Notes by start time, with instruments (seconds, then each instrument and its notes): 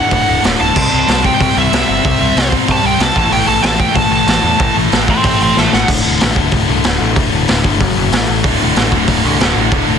Already playing: lead electric guitar F#5
0.09 picked electric bass D1, overdriven electric guitar D2 A2 D3, kick, open hi-hat
0.25 picked electric bass D1, overdriven electric guitar D2 A2 D3
0.42 picked electric bass D1, overdriven electric guitar D2 A2 D3, snare, open hi-hat
0.58 picked electric bass D1, overdriven electric guitar D2 A2 D3, lead electric guitar A5
0.73 picked electric bass C2, overdriven electric guitar C3 G3 C4, kick, crash
0.90 picked electric bass C2, overdriven electric guitar C3 G3 C4
1.06 picked electric bass C2, overdriven electric guitar C3 G3 C4, snare, open hi-hat
1.23 overdriven electric guitar C3 G3 C4, lead electric guitar G5, kick
1.39 picked electric bass C2, overdriven electric guitar C3 G3 C4, lead electric guitar G5, kick, open hi-hat
1.55 picked electric bass C2, overdriven electric guitar C3 G3 C4, lead electric guitar E5
1.72 picked electric bass C2, overdriven electric guitar C3 G3 C4, snare, open hi-hat
1.89 picked electric bass G1, overdriven electric guitar C3 G3 C4
2.03 picked electric bass C2, overdriven electric guitar C3 G3 C4, kick, open hi-hat
2.20 picked electric bass C2, overdriven electric guitar C3 G3 C4
2.35 picked electric bass C2, overdriven electric guitar C3 G3 C4, snare, open hi-hat
2.50 overdriven electric guitar C3 G3 C4, kick
2.67 picked electric bass C2, overdriven electric guitar C3 G3 C4, kick, open hi-hat
2.71 lead electric guitar A5
2.82 picked electric bass C2, overdriven electric guitar C3 G3 C4
2.86 lead electric guitar G5
2.98 picked electric bass C2, overdriven electric guitar C3 G3 C4, snare, open hi-hat
3.02 lead electric guitar A5
3.13 picked electric bass A1, overdriven electric guitar A2 E3 A3, kick
3.18 lead electric guitar A5
3.29 picked electric bass A1, overdriven electric guitar A2 E3 A3, lead electric guitar G5, open hi-hat
3.45 picked electric bass A1, overdriven electric guitar A2 E3 A3, lead electric guitar A5
3.61 picked electric bass A1, overdriven electric guitar A2 E3 A3, lead electric guitar A5, snare, open hi-hat
3.76 overdriven electric guitar A2 E3 A3
3.80 lead electric guitar G5, kick
3.92 overdriven electric guitar A2 E3 A3, kick, open hi-hat
3.96 picked electric bass A1, lead electric guitar A5
4.08 picked electric bass A1, overdriven electric guitar A2 E3 A3
4.13 lead electric guitar A5
4.24 picked electric bass A1, overdriven electric guitar A2 E3 A3, open hi-hat
4.29 snare
4.40 picked electric bass E2, overdriven electric guitar A2 E3 A3
4.57 picked electric bass A1, overdriven electric guitar A2 E3 A3, kick, open hi-hat
4.72 overdriven electric guitar A2 E3 A3
4.76 picked electric bass A1
4.88 overdriven electric guitar A2 E3 A3, open hi-hat
4.92 picked electric bass A1, snare
5.05 overdriven electric guitar A2 E3 A3, kick
5.10 lead electric guitar G5 C6
5.21 picked electric bass A1, overdriven electric guitar A2 E3 A3, kick, open hi-hat
5.26 lead electric guitar G5 C6
5.38 picked electric bass A1, overdriven electric guitar A2 E3 A3
5.42 lead electric guitar G5 C6
5.54 picked electric bass A1, overdriven electric guitar A2 E3 A3, snare
5.59 lead electric guitar E5 A5
5.70 picked electric bass A1, overdriven electric guitar A2 E3 A3, snare
5.74 lead electric guitar F#5
5.86 picked electric bass D1, overdriven electric guitar D2 A2 D3, distorted electric guitar A3 F#4, kick, crash
6.03 picked electric bass D1, overdriven electric guitar D2 A2 D3
6.20 picked electric bass A1, overdriven electric guitar D2 A2 D3, snare, open hi-hat
6.35 picked electric bass D1, overdriven electric guitar D2 A2 D3, kick
6.51 picked electric bass D1, overdriven electric guitar D2 A2 D3, kick, open hi-hat
6.67 picked electric bass C2, overdriven electric guitar D2 A2 D3, distorted electric guitar A3 F#4
6.84 picked electric bass D1, overdriven electric guitar D2 A2 D3, distorted electric guitar A3 F#4, snare, open hi-hat
7.00 picked electric bass A1, overdriven electric guitar D2 A2 D3
7.16 picked electric bass D1, overdriven electric guitar D2 A2 D3, distorted electric guitar A3 F#4, kick, open hi-hat
7.31 picked electric bass D1, overdriven electric guitar D2 A2 D3
7.48 picked electric bass D1, overdriven electric guitar D2 A2 D3, snare, open hi-hat
7.64 picked electric bass G1, overdriven electric guitar D2 A2 D3, kick
7.81 picked electric bass F#1, overdriven electric guitar F#2 C#3 F#3, kick, open hi-hat
7.96 picked electric bass F#1, overdriven electric guitar F#2 C#3 F#3
8.12 picked electric bass A1, overdriven electric guitar A2 E3 A3, snare, open hi-hat
8.28 picked electric bass A1, overdriven electric guitar A2 E3 A3
8.44 picked electric bass D1, overdriven electric guitar D2 A2 D3, distorted electric guitar A3 F#4, kick, open hi-hat
8.60 picked electric bass D1, overdriven electric guitar D2 A2 D3
8.76 picked electric bass A1, overdriven electric guitar D2 A2 D3, snare, open hi-hat
8.92 picked electric bass D1, overdriven electric guitar D2 A2 D3, kick
9.07 picked electric bass D1, overdriven electric guitar D2 A2 D3, kick, open hi-hat
9.22 picked electric bass C2, overdriven electric guitar D2 A2 D3, distorted electric guitar A3 F#4
9.38 picked electric bass D1, overdriven electric guitar D2 A2 D3, distorted electric guitar A3 F#4, snare, open hi-hat
9.55 picked electric bass A1, overdriven electric guitar D2 A2 D3
9.71 picked electric bass D1, overdriven electric guitar D2 A2 D3, distorted electric guitar A3 F#4, kick, open hi-hat
9.88 picked electric bass D1, overdriven electric guitar D2 A2 D3